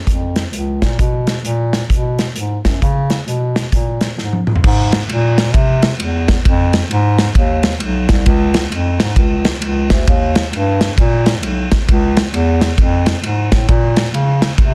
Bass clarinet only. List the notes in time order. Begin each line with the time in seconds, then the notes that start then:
0.07 F2
0.53 C#2
0.83 A#2
0.99 B2
1.45 A#2
1.90 B2
2.36 G#2
2.65 F#2
2.82 C#3
3.27 B2
3.73 A#2
4.18 G#2
4.64 G#2
5.10 A#2
5.54 C3
6.00 E2
6.45 F2
6.91 G#2
7.35 D#2
7.81 B1
8.10 C2
8.26 C#2
8.72 F2
9.00 G#2
9.16 C#2
9.63 C#2
9.91 D2
10.08 D#2
10.53 G2
10.98 A#2
11.44 B1
11.89 C#2
12.34 E2
12.78 F2
13.24 G#2
13.52 A2
13.69 A#2
14.14 C#3
14.58 C3